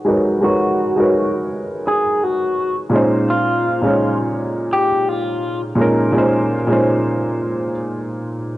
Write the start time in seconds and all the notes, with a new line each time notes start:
Already playing: G#3 D#4 F#4 A#4 B4 C#5
0.05 G#3 D#4 F#4 A#4
0.10 B4 C#5
0.41 G#3 D#4 F#4
0.45 A#4 B4 C#5
0.96 G#3 D#4 F#4 A#4
1.01 B4 C#5
1.88 G#4
2.23 F#4
2.90 A#2 G#3 C#4
2.94 D#4 C5
3.30 F4
3.82 A#2 G#3 C#4
3.86 D#4 C#5
4.73 G4
5.09 F4
5.75 A#2 G#3 C#4
5.80 D#4 A#4
6.12 A#2 G#3 C#4
6.16 D#4 C5
6.67 A#2 G#3 C#4
6.71 D#4 C5